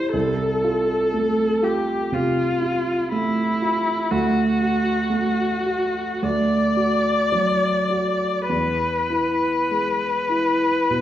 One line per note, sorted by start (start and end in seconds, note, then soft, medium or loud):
0.00 0.16 G2 soft
0.00 0.17 G3 soft
0.00 0.17 E4 soft
0.00 0.14 C5 medium
0.13 2.10 C2 soft
0.13 1.65 A4 medium
0.64 1.45 F4 soft
1.14 1.94 A3 soft
1.63 2.43 F4 soft
1.63 2.15 G4 medium
2.12 2.92 C3 soft
2.12 3.12 F4 medium
2.62 3.43 F4 soft
3.12 3.92 A3 soft
3.12 4.12 E4 medium
3.62 4.12 F4 soft
4.10 6.19 D2 soft
4.10 6.24 F#4 medium
4.61 5.44 F#4 soft
5.10 6.00 A3 soft
5.66 6.24 F#4 soft
6.22 8.45 D2 soft
6.22 8.48 D5 medium
6.77 7.67 F#4 soft
7.32 8.25 F#3 soft
7.90 8.50 F#4 soft
8.49 10.88 E2 soft
8.49 11.01 B4 medium
9.10 10.08 E4 soft
9.71 10.68 G#3 soft
10.30 11.01 E4 soft
10.90 11.01 B2 soft